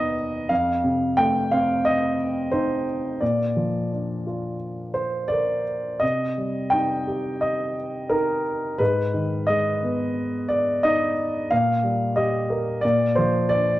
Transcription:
Already playing: D#2 B2 D#3 B3 D#4 B4 D#5
0.49 F2 F5
0.84 C3
1.17 A3 G5
1.52 C4 F5
1.85 D#5
2.52 D#4 C5
3.20 A#2 D5
3.56 F3
3.92 D4
4.27 F4
4.94 C5
5.28 A#4 D5
6.00 C3 D#5
6.38 G3
6.70 D#4 G5
7.07 G4
7.41 D#5
8.09 D#4 A#4
8.78 G#2 B4
9.14 D#3
9.47 G#3 D#5
9.83 B3
10.49 D5
10.83 D#4 D#5
11.51 A#2 F5
11.83 G3
12.16 G4 D#5
12.50 A#4
12.81 A#2 D5
13.15 F3 C5
13.49 D4 D5

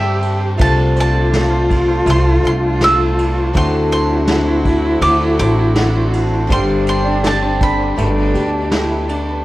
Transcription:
Already playing: G2 D3 G3 C4 D4 G4 E5 G5
0.03 C5
0.21 D4, ride
0.39 C5
0.58 C2 C3 F3 A3 C4 D4 F4 F5 A5, kick, ride
0.62 A4
0.77 D4
0.96 C5, ride
1.00 A5
1.14 D4
1.33 F5, snare, ride
1.50 C5
1.69 D4, kick, ride
1.88 C5
2.06 C2 F3 A3 C4 D4 A4 F5 C6, ride
2.25 D4
2.43 C2 C4 D4 A4 C5 C6, ride
2.63 D4
2.81 F5 E6, snare, ride
3.01 C5
3.18 D4, ride
3.38 C5
3.53 D2 D3 F#3 A3 C4 D4 E4 F#4 A4 F#5 C6, kick, ride
3.58 C4
3.74 D4
3.91 C5 C6, ride
4.11 D4
4.27 F#5, snare, ride
4.48 C5
4.65 D4, kick, ride
4.86 C5
5.01 D2 F#3 A3 C4 D4 A4 F#5 D6, ride
5.23 D4
5.37 A1 C4 D4 A4 C5 D6, ride
5.59 D4
5.75 F#5, snare, ride
5.96 C5
6.13 D4, ride
6.34 C5
6.47 G1 G2 D3 G3 C4 D4 G4, kick, ride
6.51 D3 G3 G4 G5 C6
6.70 D4
6.87 C5 C6, ride
7.06 D4
7.24 G5 A5, snare, ride
7.42 C5
7.61 D4 B5, kick, ride
7.80 C5
7.96 G1 B2 A3 B3 D4 G4 G5, ride
8.17 D4
8.34 D2 A3 B3 D4 G4 B4, ride
8.53 D4
8.70 E4 G5, snare, ride
8.90 B4
9.08 D4, ride
9.29 B4

